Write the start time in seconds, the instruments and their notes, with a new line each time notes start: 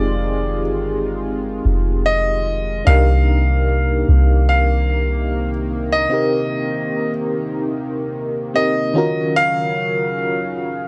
Already playing: 808-style bass F1, analog synth pad D#3 G#3 F4, fm electric piano C4 D#4 G4 G#4, grand piano D5
0.65 808-style bass G1
1.65 808-style bass F1
2.06 grand piano D#5
2.85 808-style bass C2, analog synth pad C3 D#3 A#3, fm electric piano D4 D#4 G4, grand piano F5
2.89 fm electric piano A#4
4.09 808-style bass C2
4.49 grand piano F5
5.92 grand piano D#5
6.10 fm electric piano C4 D#4 G4
6.14 fm electric piano A#4
8.54 fm electric piano C4 D#4 G4 A#4, grand piano D#5
8.94 analog synth pad C#3 F#3, fm electric piano D#3 C#4 F4 F#4
8.98 fm electric piano A#4
9.36 grand piano F5